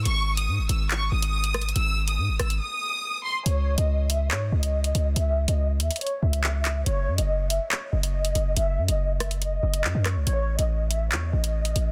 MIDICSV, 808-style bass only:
0, 0, Header, 1, 2, 480
1, 0, Start_track
1, 0, Key_signature, 4, "minor"
1, 0, Tempo, 425532
1, 62, Time_signature, 4, 2, 24, 8
1, 13442, End_track
2, 0, Start_track
2, 0, Title_t, "808-style bass"
2, 0, Program_c, 0, 38
2, 61, Note_on_c, 0, 32, 106
2, 541, Note_on_c, 0, 44, 103
2, 558, Note_off_c, 0, 32, 0
2, 662, Note_on_c, 0, 32, 104
2, 679, Note_off_c, 0, 44, 0
2, 776, Note_off_c, 0, 32, 0
2, 782, Note_on_c, 0, 32, 108
2, 1243, Note_off_c, 0, 32, 0
2, 1262, Note_on_c, 0, 32, 105
2, 1953, Note_off_c, 0, 32, 0
2, 1982, Note_on_c, 0, 32, 109
2, 2462, Note_on_c, 0, 44, 105
2, 2479, Note_off_c, 0, 32, 0
2, 2581, Note_on_c, 0, 32, 105
2, 2598, Note_off_c, 0, 44, 0
2, 2696, Note_off_c, 0, 32, 0
2, 2702, Note_on_c, 0, 32, 104
2, 2932, Note_off_c, 0, 32, 0
2, 3902, Note_on_c, 0, 37, 108
2, 4247, Note_off_c, 0, 37, 0
2, 4261, Note_on_c, 0, 37, 110
2, 4862, Note_on_c, 0, 44, 103
2, 4879, Note_off_c, 0, 37, 0
2, 5090, Note_off_c, 0, 44, 0
2, 5101, Note_on_c, 0, 37, 104
2, 5562, Note_off_c, 0, 37, 0
2, 5582, Note_on_c, 0, 37, 101
2, 5812, Note_off_c, 0, 37, 0
2, 5822, Note_on_c, 0, 37, 109
2, 6167, Note_off_c, 0, 37, 0
2, 6182, Note_on_c, 0, 37, 110
2, 6542, Note_on_c, 0, 39, 100
2, 6559, Note_off_c, 0, 37, 0
2, 6656, Note_off_c, 0, 39, 0
2, 7022, Note_on_c, 0, 37, 104
2, 7713, Note_off_c, 0, 37, 0
2, 7742, Note_on_c, 0, 30, 104
2, 7982, Note_on_c, 0, 42, 96
2, 7999, Note_off_c, 0, 30, 0
2, 8096, Note_off_c, 0, 42, 0
2, 8102, Note_on_c, 0, 30, 108
2, 8563, Note_off_c, 0, 30, 0
2, 8942, Note_on_c, 0, 30, 101
2, 9402, Note_off_c, 0, 30, 0
2, 9422, Note_on_c, 0, 30, 104
2, 9652, Note_off_c, 0, 30, 0
2, 9662, Note_on_c, 0, 30, 106
2, 9902, Note_on_c, 0, 42, 96
2, 9919, Note_off_c, 0, 30, 0
2, 10016, Note_off_c, 0, 42, 0
2, 10021, Note_on_c, 0, 30, 104
2, 10828, Note_off_c, 0, 30, 0
2, 10861, Note_on_c, 0, 30, 104
2, 11101, Note_on_c, 0, 42, 99
2, 11118, Note_off_c, 0, 30, 0
2, 11216, Note_off_c, 0, 42, 0
2, 11221, Note_on_c, 0, 42, 106
2, 11461, Note_on_c, 0, 37, 95
2, 11478, Note_off_c, 0, 42, 0
2, 11576, Note_off_c, 0, 37, 0
2, 11582, Note_on_c, 0, 33, 110
2, 11927, Note_off_c, 0, 33, 0
2, 11942, Note_on_c, 0, 33, 110
2, 12542, Note_on_c, 0, 40, 101
2, 12559, Note_off_c, 0, 33, 0
2, 12770, Note_off_c, 0, 40, 0
2, 12782, Note_on_c, 0, 33, 105
2, 13243, Note_off_c, 0, 33, 0
2, 13261, Note_on_c, 0, 33, 105
2, 13442, Note_off_c, 0, 33, 0
2, 13442, End_track
0, 0, End_of_file